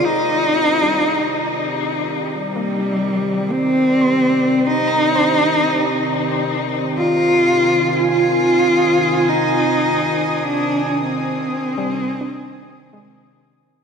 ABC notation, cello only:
X:1
M:3/4
L:1/8
Q:1/4=52
K:Cm
V:1 name="Cello"
E3 z G,2 | C2 E3 z | F2 F2 E2 | D C4 z |]